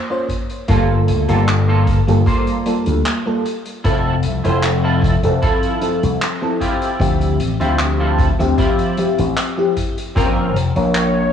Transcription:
0.10 A#3 C#4 F4 C5
0.28 muted clean electric guitar stroke, kick, closed hi-hat
0.50 closed hi-hat
0.68 G1 G3 A#3 F4 A4, kick, closed hi-hat
1.08 D2, closed hi-hat
1.28 G1 G3 A#3 F4 A4, closed hi-hat
1.48 clap, closed hi-hat
1.68 A#3 F4 A4
1.87 kick, closed hi-hat
2.07 G1 G3 A#3 F4 A4, closed hi-hat
2.26 A#3 F4 C5, kick, closed hi-hat
2.47 closed hi-hat
2.66 G3 A#3 F4 A4, closed hi-hat
2.86 D2, closed hi-hat
3.06 clap, closed hi-hat
3.26 G3 A#3 F4 A4
3.45 muted clean electric guitar stroke, closed hi-hat
3.65 closed hi-hat
3.84 F1 F3 C4 E4 F4 A4 E5, kick, closed hi-hat
4.23 C2, closed hi-hat
4.44 F1 F3 C4 E4 F4 A4 C5 E5, closed hi-hat
4.63 clap, closed hi-hat
4.84 E4 F4 A4
5.02 kick, closed hi-hat
5.23 F1 F3 C4 A4 E5, closed hi-hat
5.42 E4 F4 A4, kick, closed hi-hat
5.63 closed hi-hat
5.81 F3 C4 A4 E5, closed hi-hat
6.03 C2, closed hi-hat
6.21 clap, closed hi-hat
6.42 F3 C4 E4 A4
6.60 C4 E4 F4 G4, kick, closed hi-hat
6.82 closed hi-hat
7.00 D2 F3 C4 G4 E5, kick, closed hi-hat
7.21 closed hi-hat
7.40 A1, closed hi-hat
7.60 D2 F3 C4 E4 F4 G4 E5, closed hi-hat
7.79 clap, closed hi-hat
7.99 C4 E4 F4 A4
8.19 kick, closed hi-hat
8.39 D2 F3 C4 G4 E5, closed hi-hat
8.58 C4 E4 F4 G4, kick, closed hi-hat
8.79 closed hi-hat
8.97 F3 C4 G4 E5, closed hi-hat
9.18 A1, closed hi-hat
9.37 clap, closed hi-hat
9.57 F3 C4 E4 G4
9.76 muted clean electric guitar stroke, kick, closed hi-hat
9.98 closed hi-hat
10.15 A#1 F3 C4 C#4 F4 A#4 C5, kick, closed hi-hat
10.56 F1, closed hi-hat
10.76 A#1 F3 A#4 C#5, closed hi-hat
10.95 C#5, muted clean electric guitar stroke, clap, closed hi-hat
11.15 muted clean electric guitar stroke

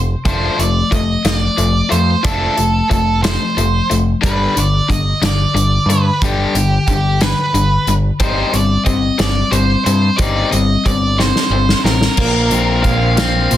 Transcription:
Already playing: F1 F2 C3
0.25 F1 F3 A3 D4 C5, kick, closed hi-hat
0.58 F1 F3 A3 D5, closed hi-hat
0.91 F1 F3 A3 D#5, kick, closed hi-hat
1.25 F1 F3 A3 D#5, snare, closed hi-hat
1.37 D5
1.57 F1 F3 A3, closed hi-hat
1.89 F2 F3 A3 C5, closed hi-hat
2.23 F1 F3 A3 D4 A4, kick, closed hi-hat
2.56 F1 F3 A3, closed hi-hat
2.90 F1 F3 A3 A4, kick, closed hi-hat
3.23 F3 A3 C5, snare, closed hi-hat
3.57 F1 F3 A3, closed hi-hat
3.90 F1 F3 A3, closed hi-hat
4.21 G1 G2 D3 G3, kick, closed hi-hat
4.25 B4
4.55 G1 G2 D3 D5, closed hi-hat
4.89 G1 G2 D3 D#5, kick, closed hi-hat
5.22 G1 G2 D3, snare, closed hi-hat
5.26 D5
5.54 G1 G2 D3, closed hi-hat
5.86 G2 D3 B4, closed hi-hat
5.90 G2
6.22 G1 G2 D3 G3 G4, kick, closed hi-hat
6.55 G1 G2 D3, closed hi-hat
6.87 G1 G2 D3 G4, kick, closed hi-hat
7.21 G2 D3 B4, snare, closed hi-hat
7.54 G1 G2 D3, closed hi-hat
7.87 G1 G2 D3, closed hi-hat
8.20 G1 G3 C4 D#4 C5, kick, closed hi-hat
8.53 G1 G3 C4 D5, closed hi-hat
8.85 G1 G3 C4 D#5, kick, closed hi-hat
9.18 G1 G3 C4 D5, snare, closed hi-hat
9.51 G1 G3 C4 C5, closed hi-hat
9.85 G2 G3 C4 C5, closed hi-hat
10.16 G1 G3 C4 D#4 D5, kick, closed hi-hat
10.51 G1 G3 C4 D#5, closed hi-hat
10.85 G1 G3 C4 D5, kick, closed hi-hat
11.18 G3 C4 C5, snare
11.36 snare
11.50 G1 G3 C4
11.69 snare
11.84 A1 G3 C4 A#4, snare
12.01 snare
12.17 A#1 A#2 F3 A#3, kick, crash
12.51 A#1 A#2 F3 C4, closed hi-hat
12.83 A#1 A#2 F3 A#3 F5, kick, closed hi-hat
13.16 A#2 F3 C4 F5, snare, closed hi-hat
13.50 A#1 A#2 F3 C5, closed hi-hat

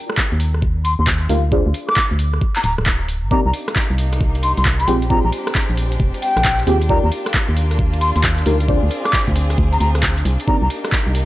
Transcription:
0.10 cross-stick
0.18 kick, clap
0.32 D#2
0.40 open hi-hat
0.54 cross-stick
0.62 kick
0.85 C6, open hi-hat
0.99 D#2 C6
1.07 kick, clap
1.29 D2 D#4 F4 G4 A#4 F5, open hi-hat
1.52 D4 F4 G#4 C5 D5, kick
1.66 D2
1.74 open hi-hat
1.89 D6, cross-stick
1.96 kick, clap
2.11 D2
2.19 open hi-hat
2.34 cross-stick
2.41 kick
2.56 A#5, clap
2.64 D1 A#5, open hi-hat
2.78 D1, cross-stick
2.86 kick, clap
3.08 open hi-hat
3.23 G#1
3.31 C4 D#4 G4 A#4 D5 A#5, kick
3.46 C2 A#5
3.53 open hi-hat
3.68 cross-stick, closed hi-hat
3.76 kick, clap
3.90 C2
3.98 open hi-hat
4.13 cross-stick, closed hi-hat
4.21 kick
4.35 closed hi-hat
4.43 C6, open hi-hat
4.57 C2 C6, closed hi-hat
4.65 kick, clap
4.80 C6, closed hi-hat
4.88 A#1 G#3 C4 F4 G4 G#4 G5, open hi-hat
5.02 closed hi-hat
5.10 C4 F4 G4 G#4 D5 A#5, kick
5.25 A#1 A#5
5.32 open hi-hat
5.47 cross-stick, closed hi-hat
5.55 kick, clap
5.70 A#1
5.77 open hi-hat
5.92 closed hi-hat
6.00 F1, kick
6.14 closed hi-hat
6.22 G5, open hi-hat
6.37 A#1, cross-stick, closed hi-hat
6.45 kick, clap
6.59 closed hi-hat
6.67 D#2 C4 F4 G4 G#4 G5, open hi-hat
6.81 closed hi-hat
6.89 A#3 D#4 F4 G4 A#4 D5 A#5, kick
7.04 D#2 A#5
7.12 open hi-hat
7.26 cross-stick, closed hi-hat
7.34 kick, clap
7.49 D#2
7.57 open hi-hat
7.71 cross-stick, closed hi-hat
7.79 kick
7.93 closed hi-hat
8.01 C6, open hi-hat
8.16 D#2 C6, closed hi-hat
8.24 kick, clap
8.38 closed hi-hat
8.46 D2 D#4 F4 G4 A#4 F5, open hi-hat
8.60 closed hi-hat
8.68 C4 D4 F4 G#4 C5 D5, kick
8.83 D2
8.91 open hi-hat
9.05 D6, cross-stick, closed hi-hat
9.13 kick, clap, closed hi-hat
9.28 D2, kick
9.36 open hi-hat
9.50 cross-stick, closed hi-hat
9.58 D2, kick
9.73 A#5, closed hi-hat
9.80 D2 A#5, open hi-hat
9.95 cross-stick, closed hi-hat
10.03 kick, clap
10.17 closed hi-hat
10.25 C2, open hi-hat
10.40 closed hi-hat
10.48 A#3 C4 D#4 G4 A#4 D5 A#5, kick
10.62 C2 A#5
10.70 open hi-hat
10.85 cross-stick, closed hi-hat
10.92 kick, clap
11.07 C2
11.15 open hi-hat

